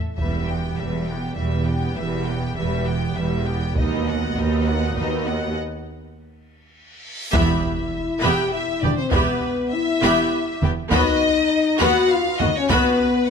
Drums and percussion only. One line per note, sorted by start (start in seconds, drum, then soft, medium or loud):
0.19 taiko soft
3.76 taiko medium
7.33 taiko loud
8.83 taiko mid soft
9.12 taiko medium
10.62 taiko mid medium
10.91 taiko loud
12.40 taiko mid medium
12.70 taiko loud